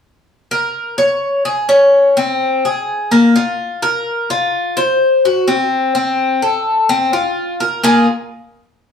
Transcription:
0.51 0.97 A#4 medium
0.98 1.45 C#5 medium
1.45 1.69 G#4 medium
1.69 2.15 C#4 medium
2.17 2.63 C4 medium
2.65 3.11 G#4 medium
3.11 3.35 A#3 medium
3.36 3.81 F4 medium
3.82 4.29 A#4 medium
4.30 4.76 F4 medium
4.77 5.23 C5 medium
5.25 5.48 F#4 medium
5.48 5.94 C4 medium
5.95 6.41 C4 medium
6.42 6.88 A4 medium
6.89 7.13 C4 medium
7.13 7.59 F4 medium
7.60 7.84 A#4 medium
7.84 8.06 A#3 medium
7.84 8.06 F4 medium
7.84 8.07 G#4 medium

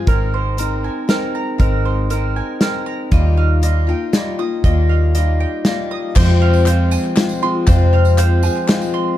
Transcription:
0.00 1.60 G#3 soft
0.00 1.60 C4 soft
0.07 0.88 G#1 medium
0.07 0.56 G#3 medium
0.07 0.57 C4 medium
0.07 0.59 D#4 medium
0.07 0.58 A#4 medium
0.07 0.60 A#4 medium
0.07 kick medium
0.07 closed hi-hat soft
0.34 1.35 C5 medium
0.57 1.06 G#3 soft
0.57 1.08 C4 soft
0.57 1.09 D#4 medium
0.57 1.08 A#4 medium
0.57 1.10 A#4 medium
0.57 closed hi-hat medium
0.84 1.34 G#5 medium
1.08 1.57 G#3 medium
1.08 1.58 C4 medium
1.08 1.60 D#4 medium
1.08 1.59 A#4 medium
1.08 1.60 A#4 medium
1.08 snare medium
1.08 closed hi-hat medium
1.35 2.36 A#5 medium
1.58 2.40 G#1 medium
1.58 2.09 G#3 medium
1.58 2.10 C4 medium
1.58 2.11 D#4 medium
1.58 2.09 A#4 medium
1.58 2.12 A#4 medium
1.58 kick medium
1.58 closed hi-hat soft
1.85 2.87 C5 medium
2.10 2.59 G#3 medium
2.10 2.60 C4 soft
2.10 2.62 D#4 medium
2.10 2.60 A#4 medium
2.10 2.63 A#4 medium
2.10 closed hi-hat soft
2.36 2.86 G#5 medium
2.61 3.12 G#3 medium
2.61 3.12 C4 medium
2.61 3.13 D#4 medium
2.61 3.12 A#4 medium
2.61 3.13 A#4 medium
2.61 snare medium
2.61 closed hi-hat medium
2.86 3.12 A#5 medium
3.12 3.92 D#2 medium
3.12 3.63 D#3 medium
3.12 3.61 G3 medium
3.12 3.61 A#3 medium
3.12 3.62 D#4 medium
3.12 3.64 F4 medium
3.12 3.62 D#5 medium
3.12 kick medium
3.12 closed hi-hat soft
3.37 4.39 F5 medium
3.62 3.88 G3 soft
3.62 3.88 A#3 soft
3.62 3.88 D#4 medium
3.62 3.85 F4 medium
3.62 4.13 D#5 medium
3.62 closed hi-hat medium
3.87 4.13 A#3 soft
3.87 4.14 D#4 soft
3.87 4.13 F4 soft
3.87 4.89 G5 medium
4.13 4.38 G3 medium
4.13 4.39 A#3 medium
4.13 4.40 D#4 medium
4.13 4.37 F4 medium
4.13 4.63 D#5 medium
4.13 snare medium
4.13 closed hi-hat medium
4.39 4.64 A#3 soft
4.39 4.64 D#4 soft
4.39 4.64 F4 medium
4.39 5.40 D#6 medium
4.64 5.44 D#2 medium
4.64 5.15 D#3 medium
4.64 5.14 G3 medium
4.64 5.15 A#3 medium
4.64 5.15 D#4 medium
4.64 5.16 F4 medium
4.64 5.14 D#5 medium
4.64 kick medium
4.64 closed hi-hat soft
4.89 5.40 F5 medium
5.15 5.64 G3 medium
5.15 5.64 A#3 soft
5.15 5.66 D#4 medium
5.15 5.66 F4 medium
5.15 5.64 D#5 medium
5.15 closed hi-hat medium
5.40 6.16 G5 medium
5.65 6.16 G3 medium
5.65 6.16 A#3 medium
5.65 6.17 D#4 medium
5.65 6.17 F4 medium
5.65 6.15 D#5 medium
5.65 snare medium
5.65 closed hi-hat medium
5.91 6.16 D#6 medium
6.15 6.67 F2 medium
6.15 6.96 F2 medium
6.15 6.67 C3 medium
6.15 9.18 F3 medium
6.15 6.65 F3 medium
6.15 9.18 G#3 medium
6.15 6.66 G#3 medium
6.15 9.18 C4 medium
6.15 6.66 C4 medium
6.15 6.68 F4 medium
6.15 6.65 C5 medium
6.15 kick medium
6.15 clap medium
6.15 crash medium
6.15 tambourine medium
6.28 tambourine soft
6.41 6.91 F5 medium
6.41 clap soft
6.54 tambourine medium
6.66 7.16 F3 medium
6.66 7.17 G#3 medium
6.66 7.17 C4 medium
6.66 7.19 F4 medium
6.66 7.66 C5 medium
6.66 clap medium
6.66 closed hi-hat medium
6.91 7.93 G#5 medium
6.91 tambourine medium
7.04 clap soft
7.16 7.42 F3 medium
7.16 7.43 G#3 medium
7.16 7.42 C4 medium
7.16 7.41 F4 medium
7.16 snare medium
7.16 clap loud
7.16 closed hi-hat medium
7.16 tambourine soft
7.29 tambourine medium
7.42 7.67 F3 medium
7.42 7.67 G#3 soft
7.42 7.68 C4 medium
7.42 7.67 F4 medium
7.42 8.44 C6 medium
7.67 8.18 F2 medium
7.67 8.47 F2 medium
7.67 8.18 C3 medium
7.67 8.18 F3 medium
7.67 8.19 G#3 medium
7.67 8.19 C4 medium
7.67 8.21 F4 medium
7.67 8.17 C5 medium
7.67 kick loud
7.67 clap medium
7.67 closed hi-hat medium
7.67 tambourine medium
7.79 tambourine soft
7.93 8.43 F5 medium
7.93 clap soft
8.05 tambourine medium
8.18 8.43 F3 medium
8.18 8.44 G#3 medium
8.18 8.43 C4 medium
8.18 8.42 F4 medium
8.18 9.18 C5 medium
8.18 clap loud
8.18 closed hi-hat medium
8.43 8.67 F3 soft
8.43 8.68 G#3 medium
8.43 8.69 C4 soft
8.43 8.68 F4 medium
8.43 9.18 G#5 medium
8.43 tambourine medium
8.56 clap soft
8.56 tambourine soft
8.68 9.18 F3 medium
8.68 9.18 G#3 medium
8.68 9.18 C4 medium
8.68 9.18 F4 medium
8.68 snare medium
8.68 clap loud
8.68 closed hi-hat medium
8.68 tambourine soft
8.81 tambourine medium
8.94 9.18 C6 medium

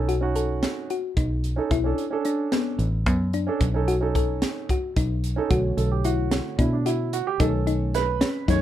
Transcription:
0.00 0.64 B1 medium
0.00 0.12 C#4 medium
0.00 0.13 D#4 medium
0.00 0.13 A4 medium
0.09 0.28 F#4 medium
0.09 closed hi-hat medium
0.21 0.92 C#4 medium
0.21 0.92 D#4 medium
0.21 0.93 F#4 medium
0.36 0.75 A4 medium
0.36 closed hi-hat medium
0.63 snare medium
0.63 closed hi-hat medium
0.90 1.10 F#4 medium
0.90 closed hi-hat medium
1.17 1.58 B1 medium
1.17 1.56 D#4 medium
1.17 kick loud
1.17 closed hi-hat medium
1.44 closed hi-hat soft
1.56 1.71 C#4 medium
1.56 1.71 D#4 medium
1.56 1.72 A4 medium
1.71 1.92 B1 medium
1.71 2.11 E4 medium
1.71 kick medium
1.71 closed hi-hat medium
1.84 2.02 C#4 medium
1.84 2.03 D4 medium
1.84 2.03 A4 medium
1.98 closed hi-hat soft
2.11 2.82 C#4 medium
2.11 2.82 D4 medium
2.11 2.83 A4 medium
2.25 2.45 D4 medium
2.25 closed hi-hat soft
2.52 2.92 B3 medium
2.52 snare medium
2.52 closed hi-hat medium
2.79 3.06 A1 medium
2.79 closed hi-hat medium
3.06 3.48 F#2 medium
3.06 3.27 B3 medium
3.06 kick medium
3.06 closed hi-hat medium
3.33 3.73 D4 medium
3.33 closed hi-hat medium
3.47 3.61 C#4 medium
3.47 3.61 D4 medium
3.47 3.62 A4 medium
3.61 4.43 B1 medium
3.61 kick medium
3.61 closed hi-hat medium
3.74 3.92 C#4 medium
3.74 3.92 D#4 medium
3.74 3.93 A4 medium
3.88 4.08 F#4 medium
3.88 closed hi-hat medium
4.01 4.72 C#4 medium
4.01 4.72 D#4 medium
4.01 4.73 A4 medium
4.15 4.55 A4 medium
4.15 kick medium
4.15 closed hi-hat medium
4.42 snare medium
4.42 closed hi-hat medium
4.69 4.90 F#4 medium
4.69 kick medium
4.69 closed hi-hat medium
4.96 5.38 B1 medium
4.96 5.36 D#4 medium
4.96 kick medium
4.96 closed hi-hat medium
5.24 closed hi-hat medium
5.36 5.49 C#4 medium
5.36 5.51 D#4 medium
5.36 5.51 A4 medium
5.50 5.71 B1 medium
5.50 7.36 D3 medium
5.50 7.36 A3 soft
5.50 5.90 F#4 medium
5.50 kick loud
5.50 closed hi-hat medium
5.77 6.39 B1 medium
5.77 5.90 A4 medium
5.77 closed hi-hat medium
5.91 6.05 G4 medium
6.04 6.44 E4 medium
6.04 6.61 F#4 medium
6.04 closed hi-hat medium
6.31 snare medium
6.31 closed hi-hat medium
6.59 7.21 B2 medium
6.59 6.78 D4 medium
6.59 6.73 E4 medium
6.59 kick medium
6.59 closed hi-hat medium
6.73 6.87 D4 medium
6.86 7.14 E4 medium
6.86 7.25 F#4 medium
6.86 closed hi-hat medium
7.13 7.27 F#4 medium
7.13 closed hi-hat medium
7.27 7.39 G4 medium
7.40 8.22 B1 loud
7.40 8.17 D#3 medium
7.40 8.17 A3 soft
7.40 8.18 C#4 medium
7.40 7.60 D#4 loud
7.40 7.91 A4 medium
7.40 kick loud
7.40 closed hi-hat medium
7.67 8.06 D#4 medium
7.67 closed hi-hat medium
7.94 8.50 B4 loud
7.94 snare soft
7.94 closed hi-hat medium
8.21 8.41 C#4 medium
8.21 snare loud
8.21 closed hi-hat medium
8.48 8.62 F#2 medium
8.48 8.62 D#3 soft
8.48 8.62 A3 soft
8.48 8.62 C#4 medium
8.48 8.62 D#4 medium
8.48 8.62 C#5 loud
8.48 kick medium
8.48 snare soft
8.48 closed hi-hat medium

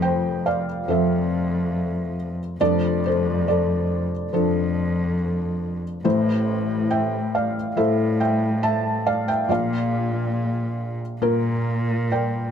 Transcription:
0.00 2.56 F1 medium
0.00 0.62 F2 medium
0.00 2.56 F2 medium
0.00 0.65 F3 medium
0.00 0.65 C4 medium
0.00 0.66 A4 medium
0.00 0.46 G5 medium
0.04 0.43 C5 medium
0.46 0.86 D5 medium
0.46 0.90 F5 medium
0.87 2.35 F2 medium
0.87 2.38 F3 soft
0.87 2.38 C4 soft
0.87 2.39 A4 medium
0.87 2.15 E5 medium
0.92 2.15 C5 soft
2.60 6.01 F1 soft
2.60 4.07 F2 medium
2.60 6.01 F2 soft
2.60 4.11 F3 medium
2.60 4.11 D4 soft
2.60 3.06 A4 medium
2.60 3.01 D5 medium
3.06 3.46 A4 medium
3.06 3.49 C5 medium
3.48 4.32 A4 medium
3.48 5.15 D5 medium
4.32 5.80 F2 medium
4.32 5.83 F3 medium
4.32 5.83 D4 soft
4.32 5.84 A4 medium
6.04 9.46 A1 medium
6.04 7.51 A2 medium
6.04 9.45 A2 medium
6.04 7.55 A3 medium
6.04 7.55 E4 medium
6.04 7.55 C5 medium
6.91 7.31 E5 medium
6.91 7.35 G5 medium
7.35 7.75 D5 soft
7.35 7.79 F5 medium
7.76 9.24 A2 medium
7.76 9.27 A3 medium
7.76 9.28 E4 soft
7.76 9.28 A4 medium
7.76 8.18 C5 soft
7.76 8.19 E5 medium
8.20 8.61 E5 medium
8.20 8.65 G5 medium
8.63 9.04 E5 medium
8.63 9.08 A5 medium
9.06 9.27 D5 medium
9.06 9.29 F5 medium
9.28 9.48 E5 medium
9.28 9.50 G5 medium
9.48 12.51 A#1 soft
9.48 10.97 A#2 medium
9.48 12.51 A#2 soft
9.48 11.00 A#3 medium
9.48 11.00 F4 soft
9.48 11.01 D5 medium
9.48 12.07 F5 medium
11.21 12.51 A#2 medium
11.21 12.51 A#3 medium
11.21 12.51 F4 medium
11.21 12.11 A#4 medium
12.12 12.51 A#4 soft
12.12 12.51 D5 soft
12.12 12.51 G5 medium

